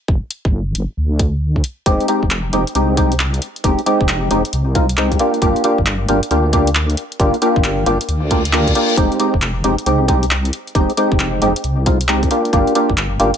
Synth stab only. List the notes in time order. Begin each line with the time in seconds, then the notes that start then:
1.86 G#3 C4 D#4 G4
2.08 G#3 C4 D#4 G4
2.53 G#3 C4 D#4 G4
2.75 G#3 C4 D#4 G4
2.97 G#3 C4 D#4 G4
3.64 G#3 C4 D#4 G4
3.86 G#3 C4 D#4 G4
4.31 G#3 C4 D#4 G4
4.75 G#3 C4 D#4 F4
4.97 G#3 C4 D#4 G4
5.20 A#3 D4 F4 G4
5.42 A#3 D4 F4 G4
5.64 A#3 D4 F4 G4
6.08 A#3 D4 F4 G4
6.31 A#3 D4 F4 G4
6.53 A#3 D4 F4 G4
7.20 A#3 D4 F4 G4
7.42 A#3 D4 F4 G4
7.86 A#3 D4 F4 G4
8.31 A#3 D4 F4 G4
8.53 A#3 D4 F4 G4
8.75 A#3 D4 F4 G4
8.97 G#3 C4 D#4 G4
9.19 G#3 C4 D#4 G4
9.64 G#3 C4 D#4 G4
9.86 G#3 C4 D#4 G4
10.09 G#3 C4 D#4 G4
10.75 G#3 C4 D#4 G4
10.97 G#3 C4 D#4 G4
11.42 G#3 C4 D#4 G4
11.86 G#3 C4 D#4 F4
12.08 G#3 C4 D#4 G4
12.31 A#3 D4 F4 G4
12.53 A#3 D4 F4 G4
12.75 A#3 D4 F4 G4
13.20 A#3 D4 F4 G4